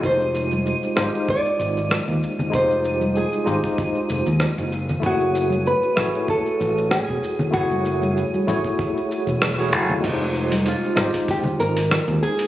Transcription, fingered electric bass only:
0.04 F1
0.97 G#1
1.59 G#1
2.08 D#2
2.53 F1
3.47 G#1
4.10 F1
4.27 D#2
4.58 F#1
5.03 F#1
5.97 A1
6.61 A1
7.08 E1
7.54 F#1
8.48 A1
9.27 E1
9.72 F#1
10.04 F1
10.97 G#1
11.59 G#1
12.08 D#2

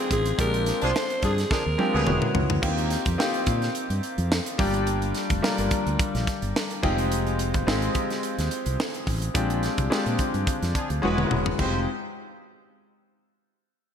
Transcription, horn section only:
0.82 F3 D4 G#4
1.23 F3 D4 G#4
1.51 F3 D4 G#4
1.94 C#3 B3 G#4
10.75 F3 D4 G#4
11.03 G#3 F#4 B4
11.60 G#3 G4 C5

